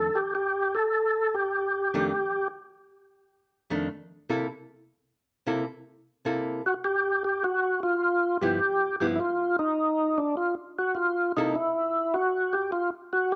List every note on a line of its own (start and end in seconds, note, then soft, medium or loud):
0.00 0.18 A4 loud
0.15 0.34 G4 medium
0.35 0.76 G4 medium
0.75 1.36 A4 loud
1.34 2.48 G4 medium
1.94 2.11 F2 medium
1.94 2.11 D#3 medium
1.94 2.11 A3 medium
1.94 2.11 D4 medium
3.70 3.87 F2 medium
3.70 3.87 D#3 medium
3.70 3.87 A3 medium
3.70 3.88 D4 medium
4.29 4.46 C3 medium
4.29 4.46 A#3 medium
4.29 4.46 E4 medium
4.29 4.47 A4 medium
5.47 5.64 C3 medium
5.47 5.64 A#3 medium
5.47 5.64 E4 medium
5.47 5.64 A4 medium
6.25 6.60 C3 medium
6.25 6.61 A#3 medium
6.25 6.61 E4 medium
6.25 6.61 A4 medium
6.66 6.74 F#4 loud
6.84 7.23 G4 loud
7.24 7.43 G4 loud
7.44 7.80 F#4 medium
7.83 8.37 F4 loud
8.41 8.58 G2 medium
8.41 8.59 F3 medium
8.41 8.59 B3 medium
8.41 8.59 E4 medium
8.41 8.96 G4 loud
9.00 9.17 G2 medium
9.00 9.18 F3 medium
9.00 9.18 B3 medium
9.00 9.18 E4 medium
9.00 9.07 G4 medium
9.16 9.19 E4 medium
9.20 9.56 F4 loud
9.59 10.20 D#4 loud
10.18 10.35 D4 medium
10.37 10.55 F4 medium
10.79 10.97 F#4 medium
10.95 11.32 F4 medium
11.37 11.53 C3 medium
11.37 11.54 A#3 medium
11.37 11.56 D#4 medium
11.37 11.54 E4 medium
11.37 11.54 A4 medium
11.55 12.16 E4 medium
12.14 12.55 F#4 medium
12.53 12.71 G4 loud
12.72 12.90 F4 medium
13.13 13.32 F#4 medium
13.32 13.36 G4 medium